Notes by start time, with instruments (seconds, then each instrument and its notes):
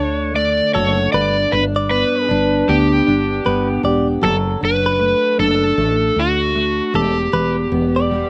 Already playing: fretless electric bass D2, steel-string acoustic guitar D3 A3 D4
0.00 electric slide guitar C#5
0.34 steel-string acoustic guitar A3, electric slide guitar D5
0.74 fretless electric bass F#1, steel-string acoustic guitar F#4, clean electric guitar A4, electric slide guitar C#5
1.12 fretless electric bass G1, steel-string acoustic guitar G2, clean electric guitar B4, electric slide guitar D5
1.52 fretless electric bass G1, steel-string acoustic guitar D4, electric slide guitar B4
1.76 clean electric guitar D5
1.90 steel-string acoustic guitar B3, electric slide guitar B4
2.29 fretless electric bass G1, steel-string acoustic guitar D4
2.68 fretless electric bass D2, steel-string acoustic guitar B3, electric slide guitar G4
3.07 fretless electric bass G1, steel-string acoustic guitar D4
3.46 fretless electric bass G1, steel-string acoustic guitar B3, clean electric guitar B4
3.84 fretless electric bass E1, steel-string acoustic guitar G4, clean electric guitar D5
4.22 fretless electric bass F#1, steel-string acoustic guitar F#3, clean electric guitar A4, electric slide guitar A4
4.61 fretless electric bass F#1, steel-string acoustic guitar D4, electric slide guitar B4
4.86 clean electric guitar B4
4.99 steel-string acoustic guitar A3
5.38 fretless electric bass F#1, steel-string acoustic guitar D4, electric slide guitar A4
5.78 fretless electric bass A1, steel-string acoustic guitar A3
6.16 fretless electric bass D2, steel-string acoustic guitar D4, electric slide guitar F#4
6.55 steel-string acoustic guitar A3
6.94 fretless electric bass E1, steel-string acoustic guitar E2, electric slide guitar G4, clean electric guitar A4
7.33 fretless electric bass E1, steel-string acoustic guitar E2, clean electric guitar B4
7.72 fretless electric bass E1, steel-string acoustic guitar B3
7.96 clean electric guitar D5
8.11 steel-string acoustic guitar G3